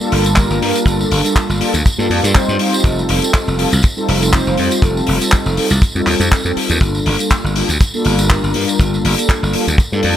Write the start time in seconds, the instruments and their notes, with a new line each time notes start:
0.00 analog polysynth G3 A#3 D4 F4 A4, tambourine
0.12 slap bass G1, open hi-hat
0.24 closed hi-hat, tambourine
0.36 analog polysynth G3 A#3 D4 F4 A#4, kick, clap, closed hi-hat, tambourine
0.50 slap bass G1, tambourine
0.62 slap bass G2, open hi-hat
0.75 closed hi-hat, tambourine
0.85 slap bass G1, analog polysynth G3 A#3 D4 F4 A4, kick, closed hi-hat, tambourine
1.01 tambourine
1.11 slap bass G1, open hi-hat
1.23 analog polysynth G3 A#3 D4 F4 A4, closed hi-hat, tambourine
1.36 kick, clap, closed hi-hat
1.49 slap bass G1, tambourine
1.60 analog polysynth G3 A#3 D4 F4 A4, muted slap bass stroke, open hi-hat
1.74 slap bass D2, closed hi-hat, tambourine
1.86 kick, closed hi-hat, tambourine
1.97 slap bass G2, analog polysynth G3 A#3 D4 F4 A4, tambourine
2.10 slap bass F2, open hi-hat
2.23 slap bass G2, closed hi-hat, tambourine
2.33 analog polysynth G3 C4 D#4 F4 C5, kick, clap, closed hi-hat, tambourine
2.48 slap bass G2, tambourine
2.59 open hi-hat
2.73 closed hi-hat, tambourine
2.83 slap bass F1, analog polysynth G3 C4 D#4 F4 A4, kick, closed hi-hat
2.99 tambourine
3.09 slap bass F1, open hi-hat
3.21 analog polysynth G3 C4 D#4 F4 A4, closed hi-hat, tambourine
3.34 kick, clap, closed hi-hat, tambourine
3.48 slap bass F1, tambourine
3.58 analog polysynth G3 C4 D#4 F4 A4, open hi-hat
3.72 slap bass C2, closed hi-hat, tambourine
3.83 kick, closed hi-hat, tambourine
3.96 analog polysynth G3 C4 D#4 F4 A4, tambourine
4.08 slap bass F1, open hi-hat
4.22 closed hi-hat, tambourine
4.33 analog polysynth G3 C4 D#4 F4 C5, kick, clap, closed hi-hat, tambourine
4.47 slap bass F1, tambourine
4.57 slap bass F2, open hi-hat
4.71 closed hi-hat, tambourine
4.82 slap bass F1, analog polysynth G3 C4 D#4 F4 A4, kick, closed hi-hat, tambourine
4.97 tambourine
5.07 slap bass F1, open hi-hat
5.21 analog polysynth G3 C4 D#4 F4 A4, closed hi-hat, tambourine
5.32 kick, clap, closed hi-hat, tambourine
5.46 slap bass F1, tambourine
5.57 analog polysynth G3 C4 D#4 F4 A4, muted slap bass stroke, open hi-hat
5.70 slap bass C2, closed hi-hat, tambourine
5.82 kick, closed hi-hat, tambourine
5.95 slap bass F2, analog polysynth G3 C4 D#4 F4 A4, tambourine
6.07 slap bass D#2, analog polysynth G3 C4 D#4 F4 A4, clap, open hi-hat
6.20 slap bass F2, closed hi-hat, tambourine
6.32 kick, clap, closed hi-hat, tambourine
6.45 slap bass F2, analog polysynth G3 C4 D#4 F4 A4, tambourine
6.56 muted slap bass stroke, open hi-hat
6.70 slap bass D#2, closed hi-hat, tambourine
6.81 slap bass G1, analog polysynth G3 A#3 D4 F4 A4, kick, closed hi-hat, tambourine
6.95 tambourine
7.06 slap bass G1, open hi-hat
7.19 analog polysynth G3 A#3 D4 F4 A4, closed hi-hat, tambourine
7.30 kick, clap, closed hi-hat, tambourine
7.44 slap bass G1, tambourine
7.55 analog polysynth G3 A#3 D4 F4 A4, open hi-hat
7.69 slap bass D2, closed hi-hat, tambourine
7.81 kick, closed hi-hat, tambourine
7.93 analog polysynth G3 A#3 D4 F4 A4, tambourine
8.05 slap bass G1, open hi-hat
8.19 closed hi-hat, tambourine
8.29 analog polysynth G3 A#3 D4 F4 A#4, kick, clap, closed hi-hat
8.43 slap bass G1, tambourine
8.54 slap bass G2, open hi-hat
8.68 closed hi-hat, tambourine
8.79 slap bass G1, analog polysynth G3 A#3 D4 F4 A4, kick, closed hi-hat, tambourine
8.94 tambourine
9.05 slap bass G1, open hi-hat
9.18 analog polysynth G3 A#3 D4 F4 A4, closed hi-hat, tambourine
9.29 kick, clap, closed hi-hat, tambourine
9.43 slap bass G1, tambourine
9.53 analog polysynth G3 A#3 D4 F4 A4, muted slap bass stroke, open hi-hat
9.68 slap bass D2, closed hi-hat, tambourine
9.78 kick, closed hi-hat, tambourine
9.92 slap bass G2, analog polysynth G3 A#3 D4 F4 A4, tambourine
10.03 slap bass F2, open hi-hat